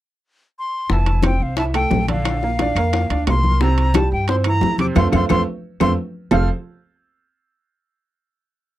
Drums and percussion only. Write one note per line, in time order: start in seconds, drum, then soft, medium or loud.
0.89 high bongo medium
0.89 high conga soft
1.06 high bongo soft
1.06 high conga soft
1.06 high timbale medium
1.23 high bongo medium
1.23 high conga medium
1.23 high timbale medium
1.23 low timbale medium
1.23 claves medium
1.40 high conga soft
1.56 high bongo medium
1.56 high conga soft
1.56 high timbale medium
1.74 high bongo soft
1.74 high conga soft
1.74 high timbale medium
1.74 claves medium
1.91 high bongo soft
1.91 low bongo medium
1.91 high conga medium
1.91 low timbale medium
2.08 high bongo soft
2.08 high conga medium
2.08 high timbale medium
2.25 high bongo medium
2.25 high conga soft
2.25 high timbale medium
2.25 claves medium
2.43 high bongo soft
2.43 high conga soft
2.59 high bongo medium
2.59 high conga medium
2.59 high timbale medium
2.59 low timbale medium
2.76 high conga soft
2.76 high timbale medium
2.76 claves medium
2.93 high bongo medium
2.93 high conga soft
2.93 high timbale medium
3.10 high bongo soft
3.10 high conga soft
3.10 high timbale medium
3.27 high bongo soft
3.27 low bongo medium
3.27 high conga soft
3.27 high timbale medium
3.27 low timbale medium
3.27 claves medium
3.43 high bongo soft
3.43 high conga medium
3.61 high bongo medium
3.61 high conga soft
3.78 high bongo soft
3.78 high conga soft
3.78 high timbale medium
3.94 high bongo medium
3.94 high conga loud
3.94 high timbale loud
3.94 low timbale medium
3.94 claves medium
4.11 high conga soft
4.27 high bongo medium
4.27 high conga soft
4.27 high timbale medium
4.44 high bongo soft
4.44 high conga soft
4.44 high timbale medium
4.44 claves medium
4.61 high bongo soft
4.61 low bongo medium
4.61 high conga medium
4.61 low timbale medium
4.78 high bongo soft
4.78 high conga medium
4.78 high timbale medium
4.95 low bongo loud
4.95 high conga medium
4.95 high timbale loud
4.95 claves medium
5.13 low bongo loud
5.13 high conga loud
5.13 high timbale loud
5.13 claves medium
5.29 low bongo loud
5.29 high conga loud
5.29 high timbale medium
5.29 claves medium
5.80 low bongo medium
5.80 high conga loud
5.80 high timbale medium
5.80 claves medium
6.31 low bongo medium
6.31 low conga medium
6.31 low timbale medium
6.31 claves medium